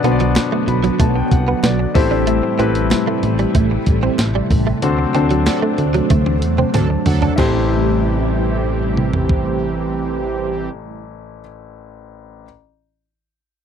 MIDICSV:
0, 0, Header, 1, 8, 480
1, 0, Start_track
1, 0, Tempo, 638298
1, 1711, Time_signature, 4, 2, 24, 8
1, 10263, End_track
2, 0, Start_track
2, 0, Title_t, "Grand piano"
2, 0, Program_c, 0, 0
2, 0, Control_c, 0, 64, 127
2, 0, Note_on_c, 0, 47, 71
2, 0, Note_on_c, 0, 59, 83
2, 0, Note_on_c, 0, 62, 80
2, 0, Note_on_c, 0, 66, 79
2, 0, Note_on_c, 0, 71, 80
2, 0, Note_on_c, 0, 74, 93
2, 29, Note_off_c, 0, 59, 0
2, 29, Note_on_c, 0, 59, 88
2, 30, Note_off_c, 0, 62, 0
2, 30, Note_on_c, 0, 62, 76
2, 34, Note_off_c, 0, 66, 0
2, 34, Note_on_c, 0, 66, 79
2, 36, Note_off_c, 0, 71, 0
2, 36, Note_on_c, 0, 71, 77
2, 37, Note_on_c, 0, 72, 75
2, 83, Note_off_c, 0, 72, 0
2, 87, Note_off_c, 0, 74, 0
2, 87, Note_on_c, 0, 74, 96
2, 480, Note_off_c, 0, 47, 0
2, 512, Note_on_c, 0, 83, 70
2, 735, Note_off_c, 0, 83, 0
2, 751, Note_on_c, 0, 81, 73
2, 862, Note_off_c, 0, 81, 0
2, 870, Note_on_c, 0, 79, 71
2, 928, Note_off_c, 0, 59, 0
2, 928, Note_off_c, 0, 62, 0
2, 930, Note_off_c, 0, 66, 0
2, 931, Note_off_c, 0, 71, 0
2, 956, Note_off_c, 0, 74, 0
2, 982, Note_off_c, 0, 79, 0
2, 989, Note_on_c, 0, 78, 76
2, 1213, Note_off_c, 0, 78, 0
2, 1229, Note_on_c, 0, 74, 78
2, 1453, Note_off_c, 0, 74, 0
2, 1463, Note_on_c, 0, 60, 91
2, 1467, Note_on_c, 0, 45, 78
2, 1467, Note_on_c, 0, 64, 83
2, 1467, Note_on_c, 0, 76, 73
2, 1469, Note_on_c, 0, 67, 85
2, 1470, Note_on_c, 0, 69, 84
2, 1473, Note_on_c, 0, 72, 100
2, 1481, Control_c, 0, 64, 0
2, 1591, Control_c, 0, 64, 127
2, 1692, Note_off_c, 0, 76, 0
2, 1916, Note_off_c, 0, 60, 0
2, 1917, Note_off_c, 0, 64, 0
2, 1919, Note_off_c, 0, 67, 0
2, 1919, Note_off_c, 0, 69, 0
2, 1920, Note_off_c, 0, 72, 0
2, 1944, Note_on_c, 0, 60, 82
2, 1945, Note_on_c, 0, 64, 76
2, 1949, Note_on_c, 0, 67, 80
2, 1951, Note_on_c, 0, 69, 77
2, 1952, Note_on_c, 0, 71, 96
2, 2159, Note_off_c, 0, 45, 0
2, 2845, Note_off_c, 0, 60, 0
2, 2845, Note_off_c, 0, 64, 0
2, 2848, Note_off_c, 0, 67, 0
2, 2849, Note_off_c, 0, 69, 0
2, 2849, Note_off_c, 0, 71, 0
2, 3628, Note_on_c, 0, 60, 84
2, 3630, Note_on_c, 0, 62, 77
2, 3632, Note_on_c, 0, 50, 70
2, 3633, Note_on_c, 0, 66, 75
2, 3635, Note_on_c, 0, 69, 77
2, 3637, Note_on_c, 0, 72, 94
2, 3642, Control_c, 0, 64, 0
2, 3767, Control_c, 0, 64, 127
2, 3854, Note_off_c, 0, 60, 0
2, 3855, Note_off_c, 0, 62, 0
2, 3856, Note_off_c, 0, 66, 0
2, 3857, Note_off_c, 0, 69, 0
2, 3858, Note_off_c, 0, 72, 0
2, 3871, Note_on_c, 0, 60, 86
2, 3873, Note_on_c, 0, 62, 79
2, 3874, Note_on_c, 0, 66, 81
2, 3877, Note_on_c, 0, 69, 79
2, 3878, Note_on_c, 0, 72, 89
2, 4321, Note_off_c, 0, 50, 0
2, 4768, Note_off_c, 0, 60, 0
2, 4769, Note_off_c, 0, 62, 0
2, 4770, Note_off_c, 0, 66, 0
2, 4771, Note_off_c, 0, 69, 0
2, 4772, Note_off_c, 0, 72, 0
2, 5069, Note_on_c, 0, 81, 73
2, 5293, Note_off_c, 0, 81, 0
2, 5308, Note_on_c, 0, 78, 70
2, 5533, Note_off_c, 0, 78, 0
2, 5534, Note_on_c, 0, 64, 79
2, 5544, Note_on_c, 0, 67, 73
2, 5552, Note_on_c, 0, 33, 76
2, 5557, Note_on_c, 0, 69, 74
2, 5560, Control_c, 0, 64, 0
2, 5569, Note_on_c, 0, 72, 83
2, 5679, Control_c, 0, 64, 127
2, 8560, Note_off_c, 0, 64, 0
2, 8565, Note_off_c, 0, 67, 0
2, 8569, Note_off_c, 0, 33, 0
2, 8572, Note_off_c, 0, 69, 0
2, 8577, Note_off_c, 0, 72, 0
2, 9360, Control_c, 0, 64, 0
2, 10263, End_track
3, 0, Start_track
3, 0, Title_t, "Analog polysynth"
3, 0, Program_c, 1, 90
3, 4109, Note_on_c, 1, 62, 102
3, 4109, Note_on_c, 1, 69, 111
3, 4110, Note_on_c, 1, 54, 99
3, 4212, Note_off_c, 1, 54, 0
3, 4212, Note_off_c, 1, 62, 0
3, 4212, Note_off_c, 1, 69, 0
3, 5071, Note_on_c, 1, 54, 79
3, 5071, Note_on_c, 1, 62, 83
3, 5071, Note_on_c, 1, 69, 91
3, 5173, Note_off_c, 1, 54, 0
3, 5173, Note_off_c, 1, 62, 0
3, 5173, Note_off_c, 1, 69, 0
3, 5310, Note_on_c, 1, 69, 109
3, 5311, Note_on_c, 1, 54, 97
3, 5311, Note_on_c, 1, 62, 92
3, 5514, Note_off_c, 1, 69, 0
3, 5515, Note_off_c, 1, 54, 0
3, 5515, Note_off_c, 1, 62, 0
3, 5549, Note_on_c, 1, 52, 89
3, 5550, Note_on_c, 1, 60, 92
3, 5550, Note_on_c, 1, 67, 101
3, 8041, Note_off_c, 1, 52, 0
3, 8042, Note_off_c, 1, 60, 0
3, 8042, Note_off_c, 1, 67, 0
3, 10263, End_track
4, 0, Start_track
4, 0, Title_t, "Clean electric guitar"
4, 0, Program_c, 2, 27
4, 33, Note_on_c, 2, 59, 79
4, 129, Note_off_c, 2, 59, 0
4, 155, Note_on_c, 2, 54, 83
4, 250, Note_off_c, 2, 54, 0
4, 393, Note_on_c, 2, 57, 83
4, 489, Note_off_c, 2, 57, 0
4, 630, Note_on_c, 2, 54, 84
4, 727, Note_off_c, 2, 54, 0
4, 749, Note_on_c, 2, 57, 91
4, 847, Note_off_c, 2, 57, 0
4, 1112, Note_on_c, 2, 59, 73
4, 1209, Note_off_c, 2, 59, 0
4, 1230, Note_on_c, 2, 59, 82
4, 1327, Note_off_c, 2, 59, 0
4, 1587, Note_on_c, 2, 62, 74
4, 1686, Note_off_c, 2, 62, 0
4, 1708, Note_on_c, 2, 57, 84
4, 1806, Note_off_c, 2, 57, 0
4, 1948, Note_on_c, 2, 60, 77
4, 2046, Note_off_c, 2, 60, 0
4, 2312, Note_on_c, 2, 57, 83
4, 2409, Note_off_c, 2, 57, 0
4, 2552, Note_on_c, 2, 55, 76
4, 2648, Note_off_c, 2, 55, 0
4, 2671, Note_on_c, 2, 57, 85
4, 2768, Note_off_c, 2, 57, 0
4, 3030, Note_on_c, 2, 60, 79
4, 3127, Note_off_c, 2, 60, 0
4, 3273, Note_on_c, 2, 55, 78
4, 3369, Note_off_c, 2, 55, 0
4, 3510, Note_on_c, 2, 57, 79
4, 3608, Note_off_c, 2, 57, 0
4, 3870, Note_on_c, 2, 60, 80
4, 3967, Note_off_c, 2, 60, 0
4, 3991, Note_on_c, 2, 54, 81
4, 4088, Note_off_c, 2, 54, 0
4, 4230, Note_on_c, 2, 57, 86
4, 4327, Note_off_c, 2, 57, 0
4, 4470, Note_on_c, 2, 54, 81
4, 4567, Note_off_c, 2, 54, 0
4, 4592, Note_on_c, 2, 57, 85
4, 4688, Note_off_c, 2, 57, 0
4, 4952, Note_on_c, 2, 60, 71
4, 5048, Note_off_c, 2, 60, 0
4, 5072, Note_on_c, 2, 60, 76
4, 5169, Note_off_c, 2, 60, 0
4, 5432, Note_on_c, 2, 62, 70
4, 5529, Note_off_c, 2, 62, 0
4, 5552, Note_on_c, 2, 60, 79
4, 5696, Note_off_c, 2, 60, 0
4, 10263, End_track
5, 0, Start_track
5, 0, Title_t, "String machine"
5, 0, Program_c, 3, 50
5, 0, Note_on_c, 3, 50, 77
5, 0, Note_on_c, 3, 54, 70
5, 0, Note_on_c, 3, 59, 70
5, 0, Note_on_c, 3, 66, 84
5, 1440, Note_off_c, 3, 50, 0
5, 1453, Note_off_c, 3, 54, 0
5, 1454, Note_off_c, 3, 59, 0
5, 1454, Note_off_c, 3, 66, 0
5, 1469, Note_on_c, 3, 57, 74
5, 1469, Note_on_c, 3, 64, 94
5, 1471, Note_on_c, 3, 48, 85
5, 1471, Note_on_c, 3, 55, 78
5, 3608, Note_off_c, 3, 57, 0
5, 3608, Note_off_c, 3, 64, 0
5, 3609, Note_off_c, 3, 55, 0
5, 3629, Note_on_c, 3, 57, 71
5, 3630, Note_on_c, 3, 54, 71
5, 3630, Note_on_c, 3, 62, 83
5, 5521, Note_off_c, 3, 48, 0
5, 5531, Note_off_c, 3, 54, 0
5, 5531, Note_off_c, 3, 57, 0
5, 5531, Note_off_c, 3, 62, 0
5, 5552, Note_on_c, 3, 55, 68
5, 5553, Note_on_c, 3, 48, 80
5, 5553, Note_on_c, 3, 57, 66
5, 5553, Note_on_c, 3, 64, 82
5, 8043, Note_off_c, 3, 48, 0
5, 8043, Note_off_c, 3, 55, 0
5, 8043, Note_off_c, 3, 57, 0
5, 8043, Note_off_c, 3, 64, 0
5, 10263, End_track
6, 0, Start_track
6, 0, Title_t, "FM bass"
6, 0, Program_c, 4, 39
6, 28, Note_on_c, 4, 35, 104
6, 288, Note_off_c, 4, 35, 0
6, 508, Note_on_c, 4, 35, 109
6, 682, Note_off_c, 4, 35, 0
6, 750, Note_on_c, 4, 35, 109
6, 923, Note_off_c, 4, 35, 0
6, 989, Note_on_c, 4, 36, 102
6, 1162, Note_off_c, 4, 36, 0
6, 1229, Note_on_c, 4, 35, 106
6, 1403, Note_off_c, 4, 35, 0
6, 1469, Note_on_c, 4, 33, 98
6, 1815, Note_off_c, 4, 33, 0
6, 1951, Note_on_c, 4, 33, 112
6, 2210, Note_off_c, 4, 33, 0
6, 2430, Note_on_c, 4, 33, 104
6, 2603, Note_off_c, 4, 33, 0
6, 2669, Note_on_c, 4, 33, 105
6, 2842, Note_off_c, 4, 33, 0
6, 2910, Note_on_c, 4, 33, 99
6, 3083, Note_off_c, 4, 33, 0
6, 3147, Note_on_c, 4, 33, 96
6, 3321, Note_off_c, 4, 33, 0
6, 3389, Note_on_c, 4, 33, 99
6, 3562, Note_off_c, 4, 33, 0
6, 3631, Note_on_c, 4, 38, 101
6, 3803, Note_off_c, 4, 38, 0
6, 3871, Note_on_c, 4, 38, 103
6, 4130, Note_off_c, 4, 38, 0
6, 4351, Note_on_c, 4, 38, 108
6, 4524, Note_off_c, 4, 38, 0
6, 4590, Note_on_c, 4, 38, 106
6, 4832, Note_on_c, 4, 40, 93
6, 4843, Note_off_c, 4, 38, 0
6, 5004, Note_off_c, 4, 40, 0
6, 5072, Note_on_c, 4, 38, 93
6, 5244, Note_off_c, 4, 38, 0
6, 5313, Note_on_c, 4, 38, 100
6, 5485, Note_off_c, 4, 38, 0
6, 5551, Note_on_c, 4, 33, 92
6, 8042, Note_off_c, 4, 33, 0
6, 10263, End_track
7, 0, Start_track
7, 0, Title_t, "Muted clean electric guitar strokes"
7, 511, Note_on_c, 9, 29, 46
7, 586, Note_off_c, 9, 29, 0
7, 869, Note_on_c, 9, 29, 48
7, 945, Note_off_c, 9, 29, 0
7, 1349, Note_on_c, 9, 29, 43
7, 1424, Note_off_c, 9, 29, 0
7, 1830, Note_on_c, 9, 29, 46
7, 1905, Note_off_c, 9, 29, 0
7, 2433, Note_on_c, 9, 29, 46
7, 2508, Note_off_c, 9, 29, 0
7, 2792, Note_on_c, 9, 29, 48
7, 2867, Note_off_c, 9, 29, 0
7, 3391, Note_on_c, 9, 29, 45
7, 3466, Note_off_c, 9, 29, 0
7, 3749, Note_on_c, 9, 29, 45
7, 3825, Note_off_c, 9, 29, 0
7, 4350, Note_on_c, 9, 29, 46
7, 4425, Note_off_c, 9, 29, 0
7, 4712, Note_on_c, 9, 29, 46
7, 4787, Note_off_c, 9, 29, 0
7, 5190, Note_on_c, 9, 29, 43
7, 5265, Note_off_c, 9, 29, 0
7, 10263, End_track
8, 0, Start_track
8, 0, Title_t, "Drums"
8, 33, Note_on_c, 9, 42, 68
8, 108, Note_off_c, 9, 42, 0
8, 150, Note_on_c, 9, 42, 59
8, 225, Note_off_c, 9, 42, 0
8, 268, Note_on_c, 9, 39, 94
8, 271, Note_on_c, 9, 54, 71
8, 273, Note_on_c, 9, 38, 107
8, 273, Note_on_c, 9, 42, 94
8, 343, Note_off_c, 9, 39, 0
8, 346, Note_off_c, 9, 54, 0
8, 348, Note_off_c, 9, 38, 0
8, 348, Note_off_c, 9, 42, 0
8, 511, Note_on_c, 9, 42, 77
8, 586, Note_off_c, 9, 42, 0
8, 632, Note_on_c, 9, 42, 54
8, 707, Note_off_c, 9, 42, 0
8, 749, Note_on_c, 9, 42, 99
8, 750, Note_on_c, 9, 36, 99
8, 824, Note_off_c, 9, 42, 0
8, 825, Note_off_c, 9, 36, 0
8, 988, Note_on_c, 9, 42, 80
8, 990, Note_on_c, 9, 36, 100
8, 1064, Note_off_c, 9, 42, 0
8, 1065, Note_off_c, 9, 36, 0
8, 1229, Note_on_c, 9, 39, 86
8, 1230, Note_on_c, 9, 54, 65
8, 1231, Note_on_c, 9, 38, 102
8, 1232, Note_on_c, 9, 42, 94
8, 1304, Note_off_c, 9, 39, 0
8, 1305, Note_off_c, 9, 54, 0
8, 1306, Note_off_c, 9, 38, 0
8, 1307, Note_off_c, 9, 42, 0
8, 1467, Note_on_c, 9, 46, 75
8, 1469, Note_on_c, 9, 36, 113
8, 1543, Note_off_c, 9, 46, 0
8, 1544, Note_off_c, 9, 36, 0
8, 1708, Note_on_c, 9, 42, 95
8, 1783, Note_off_c, 9, 42, 0
8, 1951, Note_on_c, 9, 42, 67
8, 2026, Note_off_c, 9, 42, 0
8, 2069, Note_on_c, 9, 42, 65
8, 2144, Note_off_c, 9, 42, 0
8, 2187, Note_on_c, 9, 39, 90
8, 2189, Note_on_c, 9, 54, 70
8, 2191, Note_on_c, 9, 38, 107
8, 2191, Note_on_c, 9, 42, 92
8, 2262, Note_off_c, 9, 39, 0
8, 2265, Note_off_c, 9, 54, 0
8, 2266, Note_off_c, 9, 38, 0
8, 2266, Note_off_c, 9, 42, 0
8, 2429, Note_on_c, 9, 42, 74
8, 2504, Note_off_c, 9, 42, 0
8, 2549, Note_on_c, 9, 42, 50
8, 2624, Note_off_c, 9, 42, 0
8, 2667, Note_on_c, 9, 42, 92
8, 2669, Note_on_c, 9, 36, 101
8, 2743, Note_off_c, 9, 42, 0
8, 2744, Note_off_c, 9, 36, 0
8, 2906, Note_on_c, 9, 42, 82
8, 2909, Note_on_c, 9, 36, 99
8, 2981, Note_off_c, 9, 42, 0
8, 2985, Note_off_c, 9, 36, 0
8, 3149, Note_on_c, 9, 39, 82
8, 3149, Note_on_c, 9, 54, 63
8, 3150, Note_on_c, 9, 38, 103
8, 3151, Note_on_c, 9, 42, 89
8, 3224, Note_off_c, 9, 39, 0
8, 3224, Note_off_c, 9, 54, 0
8, 3226, Note_off_c, 9, 38, 0
8, 3226, Note_off_c, 9, 42, 0
8, 3388, Note_on_c, 9, 46, 76
8, 3389, Note_on_c, 9, 36, 101
8, 3463, Note_off_c, 9, 46, 0
8, 3464, Note_off_c, 9, 36, 0
8, 3627, Note_on_c, 9, 42, 99
8, 3703, Note_off_c, 9, 42, 0
8, 3869, Note_on_c, 9, 42, 66
8, 3944, Note_off_c, 9, 42, 0
8, 3989, Note_on_c, 9, 42, 61
8, 4064, Note_off_c, 9, 42, 0
8, 4108, Note_on_c, 9, 54, 71
8, 4110, Note_on_c, 9, 38, 110
8, 4110, Note_on_c, 9, 42, 91
8, 4111, Note_on_c, 9, 39, 89
8, 4183, Note_off_c, 9, 54, 0
8, 4185, Note_off_c, 9, 38, 0
8, 4185, Note_off_c, 9, 42, 0
8, 4186, Note_off_c, 9, 39, 0
8, 4348, Note_on_c, 9, 42, 69
8, 4423, Note_off_c, 9, 42, 0
8, 4470, Note_on_c, 9, 42, 53
8, 4545, Note_off_c, 9, 42, 0
8, 4588, Note_on_c, 9, 42, 98
8, 4589, Note_on_c, 9, 48, 58
8, 4591, Note_on_c, 9, 36, 100
8, 4663, Note_off_c, 9, 42, 0
8, 4664, Note_off_c, 9, 48, 0
8, 4666, Note_off_c, 9, 36, 0
8, 4709, Note_on_c, 9, 48, 57
8, 4785, Note_off_c, 9, 48, 0
8, 4828, Note_on_c, 9, 42, 80
8, 4903, Note_off_c, 9, 42, 0
8, 4950, Note_on_c, 9, 47, 75
8, 5025, Note_off_c, 9, 47, 0
8, 5068, Note_on_c, 9, 45, 89
8, 5070, Note_on_c, 9, 42, 87
8, 5071, Note_on_c, 9, 39, 80
8, 5143, Note_off_c, 9, 45, 0
8, 5146, Note_off_c, 9, 39, 0
8, 5146, Note_off_c, 9, 42, 0
8, 5307, Note_on_c, 9, 46, 72
8, 5309, Note_on_c, 9, 43, 107
8, 5382, Note_off_c, 9, 46, 0
8, 5384, Note_off_c, 9, 43, 0
8, 5429, Note_on_c, 9, 43, 96
8, 5504, Note_off_c, 9, 43, 0
8, 5549, Note_on_c, 9, 49, 85
8, 5550, Note_on_c, 9, 36, 101
8, 5552, Note_on_c, 9, 39, 85
8, 5624, Note_off_c, 9, 49, 0
8, 5625, Note_off_c, 9, 36, 0
8, 5627, Note_off_c, 9, 39, 0
8, 6748, Note_on_c, 9, 47, 66
8, 6824, Note_off_c, 9, 47, 0
8, 6869, Note_on_c, 9, 43, 71
8, 6944, Note_off_c, 9, 43, 0
8, 6989, Note_on_c, 9, 36, 85
8, 7065, Note_off_c, 9, 36, 0
8, 10263, End_track
0, 0, End_of_file